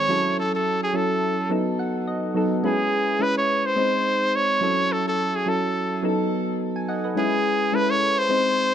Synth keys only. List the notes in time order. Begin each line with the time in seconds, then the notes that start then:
Already playing: D#3 G#3 C4 G#4
0.08 F#3 C#4 E4 A4
0.93 F#3 C#4 E4 A4
1.50 F#3 B3 D#4 A4
1.79 F#5
2.07 D#5
2.34 F#3 B3 D#4 A4
2.63 G#3 C#4 E4 B4
3.19 G#3 C#4 E4 B4
3.76 G#3 C4 D#4 C5
4.61 F#3 C#4 E4 A4
5.46 F#3 C#4 E4 A4
6.02 F#3 B3 D#4 A4
6.76 G#5
6.88 D#5 F#5
7.04 B4 D#5
7.15 G#3 C#4 E4 B4
7.72 G#3 C#4 E4 A4
7.81 B4
8.29 G#3 C4 D#4 C5